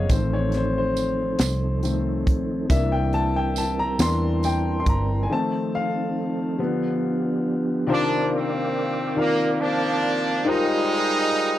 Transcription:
Already playing: C#3 F3 G#3 C4 C#5 D#5 F5 F#5 G#5
0.09 A1 D#3 A3 C4 D#4 A4 C5, kick, closed hi-hat, tambourine
0.33 C#5
0.52 snare, closed hi-hat
0.57 C5
0.78 C5
0.96 closed hi-hat, tambourine
1.39 C2, snare, closed hi-hat, tambourine
1.83 D#3 A3 C4, closed hi-hat, tambourine
2.27 A#1, kick, closed hi-hat
2.69 C2 E3 G3 A#3 D4 E4 A#4 E5, kick, closed hi-hat, tambourine
2.92 G5
3.13 A5, closed hi-hat
3.36 G5
3.56 A5, closed hi-hat, tambourine
3.79 A#5
3.99 E2 E3 A#3 D4 C6, snare, closed hi-hat, tambourine
4.43 G5, closed hi-hat, tambourine
4.80 C6
4.86 G1 A#5, kick, closed hi-hat
5.23 G#5
5.29 D#3 F3 A3 C4 D#4 A4 A5
5.75 F5
6.58 D3 F3 B3 D4 G4
7.87 C3 D#3 F3 A#3 C4 D4 F4 A#4 C5 D5 F5 D6
7.92 D4
8.33 D#3 F3 C4
9.15 D#3 F4 A#4 D5 F5
9.20 A#3
9.60 F3 A#3 D4
10.45 G3 G#3 D#4 F4 G4 A#4 C5 F5 G5 D#6

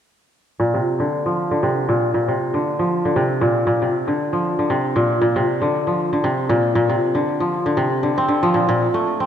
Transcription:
0.60 A#2
0.74 C3
1.00 D3
1.26 F3
1.51 D3
1.63 C3
1.89 A#2
2.14 A#2
2.28 C3
2.54 D3
2.79 F3
3.05 D3
3.16 C3
3.41 A#2
3.67 A#2
3.82 C3
4.08 D3
4.33 F3
4.59 D3
4.70 C3
4.96 A#2
5.21 A#2
5.36 C3
5.62 D3
5.87 F3
6.13 D3
6.24 C3
6.49 A#2
6.75 A#2
6.89 C3
7.15 D3
7.40 F3
7.66 D3
7.77 C3
8.03 D3
8.18 C4
8.28 D3
8.43 F3
8.54 A#2
8.69 A#2
8.94 A3
9.20 C4

